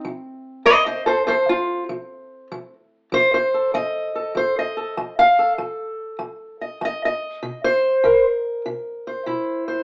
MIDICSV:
0, 0, Header, 1, 2, 480
1, 0, Start_track
1, 0, Tempo, 614754
1, 33, Time_signature, 4, 2, 24, 8
1, 7675, End_track
2, 0, Start_track
2, 0, Title_t, "Steel-string acoustic guitar"
2, 0, Program_c, 0, 25
2, 0, Note_on_c, 0, 60, 44
2, 36, Note_on_c, 0, 53, 80
2, 484, Note_off_c, 0, 53, 0
2, 512, Note_on_c, 0, 72, 91
2, 513, Note_on_c, 0, 53, 82
2, 515, Note_on_c, 0, 75, 113
2, 564, Note_off_c, 0, 72, 0
2, 664, Note_off_c, 0, 75, 0
2, 674, Note_on_c, 0, 75, 89
2, 681, Note_on_c, 0, 72, 68
2, 783, Note_off_c, 0, 72, 0
2, 828, Note_on_c, 0, 69, 83
2, 834, Note_off_c, 0, 75, 0
2, 837, Note_on_c, 0, 72, 90
2, 912, Note_off_c, 0, 69, 0
2, 964, Note_off_c, 0, 53, 0
2, 987, Note_off_c, 0, 72, 0
2, 990, Note_on_c, 0, 69, 81
2, 996, Note_on_c, 0, 53, 69
2, 999, Note_on_c, 0, 72, 103
2, 1045, Note_off_c, 0, 69, 0
2, 1158, Note_off_c, 0, 72, 0
2, 1165, Note_on_c, 0, 65, 85
2, 1429, Note_off_c, 0, 65, 0
2, 1446, Note_off_c, 0, 53, 0
2, 1477, Note_on_c, 0, 53, 80
2, 1927, Note_off_c, 0, 53, 0
2, 1964, Note_on_c, 0, 53, 83
2, 2133, Note_off_c, 0, 60, 0
2, 2411, Note_off_c, 0, 53, 0
2, 2437, Note_on_c, 0, 53, 90
2, 2450, Note_on_c, 0, 72, 106
2, 2599, Note_off_c, 0, 72, 0
2, 2608, Note_on_c, 0, 72, 85
2, 2765, Note_on_c, 0, 69, 48
2, 2888, Note_off_c, 0, 53, 0
2, 2920, Note_on_c, 0, 53, 77
2, 2922, Note_off_c, 0, 72, 0
2, 2925, Note_on_c, 0, 75, 96
2, 3234, Note_off_c, 0, 69, 0
2, 3244, Note_on_c, 0, 69, 44
2, 3370, Note_off_c, 0, 53, 0
2, 3395, Note_on_c, 0, 53, 75
2, 3404, Note_off_c, 0, 75, 0
2, 3412, Note_on_c, 0, 72, 93
2, 3568, Note_off_c, 0, 72, 0
2, 3582, Note_on_c, 0, 75, 81
2, 3714, Note_off_c, 0, 69, 0
2, 3723, Note_on_c, 0, 69, 48
2, 3847, Note_off_c, 0, 53, 0
2, 3864, Note_off_c, 0, 69, 0
2, 3883, Note_on_c, 0, 53, 80
2, 4048, Note_off_c, 0, 75, 0
2, 4051, Note_on_c, 0, 77, 108
2, 4207, Note_on_c, 0, 69, 55
2, 4314, Note_off_c, 0, 77, 0
2, 4331, Note_off_c, 0, 53, 0
2, 4359, Note_on_c, 0, 53, 83
2, 4809, Note_off_c, 0, 53, 0
2, 4832, Note_on_c, 0, 53, 68
2, 5165, Note_on_c, 0, 75, 51
2, 5285, Note_off_c, 0, 53, 0
2, 5319, Note_on_c, 0, 53, 76
2, 5323, Note_off_c, 0, 75, 0
2, 5348, Note_on_c, 0, 75, 100
2, 5495, Note_off_c, 0, 75, 0
2, 5506, Note_on_c, 0, 75, 82
2, 5768, Note_off_c, 0, 53, 0
2, 5784, Note_off_c, 0, 69, 0
2, 5798, Note_on_c, 0, 48, 91
2, 5965, Note_off_c, 0, 75, 0
2, 5968, Note_on_c, 0, 72, 104
2, 6246, Note_off_c, 0, 48, 0
2, 6275, Note_on_c, 0, 48, 81
2, 6283, Note_on_c, 0, 70, 52
2, 6443, Note_off_c, 0, 72, 0
2, 6724, Note_off_c, 0, 48, 0
2, 6759, Note_on_c, 0, 48, 79
2, 7083, Note_on_c, 0, 72, 50
2, 7204, Note_off_c, 0, 48, 0
2, 7233, Note_on_c, 0, 48, 75
2, 7237, Note_on_c, 0, 64, 46
2, 7548, Note_off_c, 0, 72, 0
2, 7557, Note_on_c, 0, 72, 55
2, 7675, Note_off_c, 0, 48, 0
2, 7675, Note_off_c, 0, 64, 0
2, 7675, Note_off_c, 0, 70, 0
2, 7675, Note_off_c, 0, 72, 0
2, 7675, End_track
0, 0, End_of_file